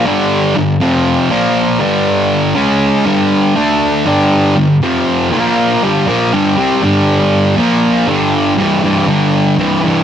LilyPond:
\new Staff \with { instrumentName = "Distorted electric guitar" } { \clef bass \time 4/4 \key g \minor \tempo 4 = 120 <g, d g>4 <g, d>8 <f, c f>4 <bes, f bes>4 <g, d g>8~ | <g, d g>4 <cis gis cis'>4 <g, d g>4 <d a d'>4 | <g, d g>4 <g, d>8 <f, c f>4 <bes, f bes>4 <g, d g>8 | <bes, f bes>8 <g, d g>8 <c g c'>8 <g, d g>4. <bes, f bes>4 |
<g, d>4 <g, e>8 <g, e>8 <g, d>4 <g, e>8 <g, e>8 | }